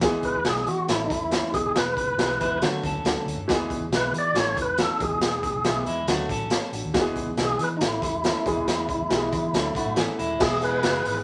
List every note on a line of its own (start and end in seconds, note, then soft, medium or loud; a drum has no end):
0.01 0.20 E2 loud
0.01 0.33 E3 loud
0.01 0.34 G#3 loud
0.01 0.34 B3 medium
0.01 0.34 G#4 loud
0.01 kick loud
0.01 snare loud
0.01 closed hi-hat medium
0.23 0.47 B4 medium
0.23 kick medium
0.23 closed hi-hat medium
0.35 0.44 E2 medium
0.44 0.63 B1 medium
0.44 0.76 E3 medium
0.44 0.77 G#3 medium
0.44 0.77 B3 medium
0.44 0.77 G#4 medium
0.44 0.68 G#4 medium
0.44 snare medium
0.44 closed hi-hat medium
0.56 snare soft
0.67 0.85 E3 medium
0.67 0.90 F#4 medium
0.67 closed hi-hat medium
0.88 1.07 A1 loud
0.88 1.20 E3 medium
0.88 1.20 A3 medium
0.88 0.94 C4 medium
0.88 1.04 E4 medium
0.88 1.21 A4 medium
0.88 snare loud
0.88 closed hi-hat medium
0.94 1.23 C#4 medium
1.06 1.11 D#4 medium
1.10 1.37 E2 medium
1.10 1.52 E4 medium
1.10 kick medium
1.10 closed hi-hat medium
1.31 1.51 E3 medium
1.31 1.53 A3 medium
1.31 1.53 C#4 medium
1.31 1.54 A4 medium
1.31 snare loud
1.31 closed hi-hat medium
1.52 1.63 E2 loud
1.52 2.05 E3 medium
1.52 2.05 G#3 medium
1.52 2.05 B3 medium
1.52 2.06 G#4 medium
1.52 1.76 G#4 medium
1.52 kick loud
1.52 closed hi-hat medium
1.65 1.74 D#1 medium
1.76 1.94 E1 medium
1.76 2.59 B4 medium
1.76 snare loud
1.76 closed hi-hat medium
1.97 kick medium
1.97 closed hi-hat medium
2.07 2.18 E1 medium
2.18 2.36 B1 medium
2.18 2.50 E3 medium
2.18 2.50 G#3 medium
2.18 2.50 B3 medium
2.18 2.24 G4 medium
2.18 snare loud
2.18 closed hi-hat medium
2.25 2.53 G#4 medium
2.30 snare soft
2.40 2.59 E2 medium
2.40 2.61 G#3 medium
2.40 2.61 E4 medium
2.40 kick medium
2.40 closed hi-hat medium
2.61 2.80 D3 medium
2.61 2.93 D3 medium
2.61 2.94 F#3 medium
2.61 2.94 A3 medium
2.61 2.83 A3 medium
2.61 2.83 F#4 medium
2.61 2.94 F#4 medium
2.61 snare loud
2.61 closed hi-hat medium
2.83 3.02 D2 medium
2.83 3.46 C#4 medium
2.83 3.46 A4 medium
2.83 kick medium
2.83 closed hi-hat medium
3.04 3.14 D2 medium
3.04 3.37 D3 medium
3.04 3.37 F#3 medium
3.04 3.37 A3 medium
3.04 3.38 F#4 medium
3.04 snare loud
3.04 closed hi-hat medium
3.26 3.35 D2 medium
3.26 closed hi-hat medium
3.36 3.46 F#2 medium
3.48 3.67 E2 loud
3.48 3.79 E3 loud
3.48 3.80 G#3 medium
3.48 3.80 B3 medium
3.48 3.54 F#4 medium
3.48 kick medium
3.48 snare loud
3.48 closed hi-hat medium
3.55 3.83 G#4 loud
3.70 kick medium
3.70 closed hi-hat medium
3.80 3.90 E2 medium
3.90 4.09 B1 medium
3.90 4.23 E3 medium
3.90 4.23 G#3 medium
3.90 4.24 B3 medium
3.90 4.24 E4 medium
3.90 snare loud
3.90 closed hi-hat medium
3.95 4.14 B4 medium
4.12 4.31 E3 medium
4.12 closed hi-hat medium
4.18 4.38 D5 medium
4.34 4.52 A1 medium
4.34 4.66 E3 medium
4.34 4.67 A3 medium
4.34 4.67 C#4 medium
4.34 4.67 A4 medium
4.34 snare loud
4.34 closed hi-hat medium
4.39 4.57 C#5 medium
4.57 4.84 E2 medium
4.57 kick medium
4.57 closed hi-hat medium
4.62 4.81 B4 medium
4.77 4.98 E3 medium
4.77 5.00 A3 medium
4.77 5.00 C#4 medium
4.77 5.01 F#4 medium
4.77 snare loud
4.77 closed hi-hat medium
4.82 5.02 A4 medium
4.99 5.09 E2 medium
4.99 5.51 E3 medium
4.99 5.52 G#3 medium
4.99 5.52 B3 medium
4.99 5.52 G#4 medium
4.99 kick loud
4.99 closed hi-hat medium
5.04 5.84 G#4 medium
5.10 5.19 D#1 medium
5.20 5.39 E1 loud
5.20 snare loud
5.20 closed hi-hat medium
5.43 kick medium
5.43 closed hi-hat medium
5.53 5.62 E1 medium
5.64 5.83 B1 medium
5.64 5.96 E3 medium
5.64 5.97 G#3 medium
5.64 5.97 B3 medium
5.64 5.97 E4 medium
5.64 snare loud
5.64 closed hi-hat medium
5.86 6.04 E2 medium
5.86 6.08 G#3 medium
5.86 6.07 E4 medium
5.86 closed hi-hat medium
6.07 6.25 D2 medium
6.07 6.40 D3 medium
6.07 6.40 F#3 medium
6.07 6.30 A3 medium
6.07 6.40 A3 medium
6.07 6.29 F#4 medium
6.07 6.41 F#4 medium
6.07 snare loud
6.07 closed hi-hat medium
6.29 6.57 A1 medium
6.29 6.92 C#4 medium
6.29 6.92 A4 medium
6.29 kick medium
6.29 closed hi-hat medium
6.50 6.72 A4 medium
6.50 6.72 C#5 medium
6.50 snare loud
6.50 closed hi-hat medium
6.72 6.82 A1 medium
6.72 7.14 D4 medium
6.72 6.94 F#4 medium
6.72 closed hi-hat medium
6.84 6.93 D#2 medium
6.94 7.26 E3 loud
6.94 7.26 G#3 medium
6.94 7.26 B3 loud
6.94 7.00 F#4 medium
6.94 kick loud
6.94 snare loud
6.94 closed hi-hat medium
7.00 7.29 G#4 loud
7.16 kick medium
7.16 closed hi-hat medium
7.27 7.36 E2 medium
7.37 7.56 B1 medium
7.37 7.69 E3 medium
7.37 7.69 G#3 medium
7.37 7.69 B3 medium
7.37 7.44 F#4 medium
7.37 snare medium
7.37 closed hi-hat medium
7.43 7.62 G#4 medium
7.43 7.72 G#4 medium
7.59 7.77 E3 medium
7.59 7.69 B4 loud
7.59 closed hi-hat medium
7.77 7.99 A1 medium
7.77 7.82 D#4 medium
7.77 closed hi-hat medium
7.81 8.12 E3 medium
7.81 8.13 A3 medium
7.81 8.13 C#4 medium
7.81 9.94 E4 medium
7.81 8.13 A4 medium
7.81 snare loud
8.02 8.30 E2 medium
8.02 kick medium
8.02 closed hi-hat medium
8.24 8.44 E3 medium
8.24 8.46 A3 medium
8.24 8.46 C#4 medium
8.24 8.46 A4 medium
8.24 snare loud
8.24 closed hi-hat medium
8.45 8.55 E2 loud
8.45 8.97 E3 medium
8.45 8.98 G#3 medium
8.45 8.98 B3 medium
8.45 8.98 G#4 loud
8.45 kick loud
8.45 closed hi-hat medium
8.55 8.65 D#1 medium
8.66 8.85 E2 medium
8.66 snare loud
8.66 closed hi-hat medium
8.89 kick medium
8.89 closed hi-hat medium
8.98 9.08 E2 medium
9.10 9.28 B1 medium
9.10 9.41 E3 medium
9.10 9.42 G#3 medium
9.10 9.42 B3 medium
9.10 9.16 G4 medium
9.10 snare loud
9.10 closed hi-hat medium
9.16 9.45 G#4 medium
9.32 9.50 E3 medium
9.32 kick medium
9.32 closed hi-hat medium
9.53 9.71 D2 medium
9.53 9.85 F#3 medium
9.53 9.85 A3 medium
9.53 9.85 D4 medium
9.53 9.86 A4 medium
9.53 snare loud
9.53 closed hi-hat medium
9.75 9.97 A3 medium
9.75 9.96 F#4 medium
9.75 muted fingered electric bass stroke soft
9.75 kick medium
9.75 closed hi-hat medium
9.85 9.95 A2 medium
9.96 10.05 A1 medium
9.96 10.28 E3 medium
9.96 10.28 A3 medium
9.96 10.18 B3 medium
9.96 10.28 C#4 medium
9.96 10.18 G#4 medium
9.96 10.29 A4 medium
9.96 snare loud
9.96 closed hi-hat medium
10.18 10.36 D#1 medium
10.18 10.60 G#3 medium
10.18 10.59 E4 medium
10.18 closed hi-hat medium
10.39 10.83 E1 loud
10.39 11.24 E3 medium
10.39 10.55 B3 medium
10.39 11.24 B3 medium
10.39 10.55 E4 medium
10.39 11.24 G#4 medium
10.39 10.56 G#4 loud
10.39 10.61 G#4 medium
10.39 kick loud
10.39 snare loud
10.39 crash loud
10.61 11.02 G#3 medium
10.61 10.77 B3 medium
10.61 10.77 E4 medium
10.61 11.02 G#4 medium
10.61 10.78 G#4 medium
10.61 11.07 B4 loud
10.61 closed hi-hat medium
10.82 11.01 F#1 medium
10.82 11.14 B3 medium
10.82 11.14 E4 medium
10.82 10.89 F#4 medium
10.82 snare loud
10.82 closed hi-hat medium
10.89 11.17 G#4 medium
10.94 snare soft
11.05 11.24 G#1 medium
11.05 11.17 B4 medium
11.05 closed hi-hat medium